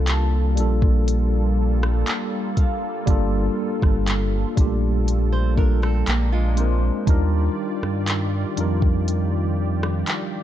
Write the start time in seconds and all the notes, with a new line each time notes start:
Already playing: C2 G3 A#3 D4 F4 A4
0.07 A5, clap, closed hi-hat
0.56 A#1 G3 A#3 D4 F4, closed hi-hat
0.60 A4
0.82 kick
1.08 closed hi-hat
1.83 cross-stick
2.07 clap, closed hi-hat
2.57 F5, kick, closed hi-hat
3.06 G1 G3 A#3 D4 F4, kick, closed hi-hat
3.10 A4
3.82 G1, kick, cross-stick
4.07 clap, closed hi-hat
4.56 A#1 G3 A3 D4 F4, kick, closed hi-hat
4.60 A#3 G4
5.08 closed hi-hat
5.32 C5
5.56 G3 A#3 D4 F4 A#4, kick
5.60 A4
5.82 C4 A4, cross-stick
6.07 A#1 G#3 A#3 D4 G4, clap, closed hi-hat
6.32 G#3 F4
6.56 G#3 C4 D4 F4 C5, closed hi-hat
6.60 A#4
7.06 D#2 D#3 G3 D4 D#4 F4 G4 D5, kick, closed hi-hat
7.10 A#4
7.83 G2, cross-stick
8.07 clap, closed hi-hat
8.56 F2 F3 D4 D#4 F4, closed hi-hat
8.60 G3 A#4
8.82 kick
9.08 closed hi-hat
9.83 cross-stick
10.07 clap, closed hi-hat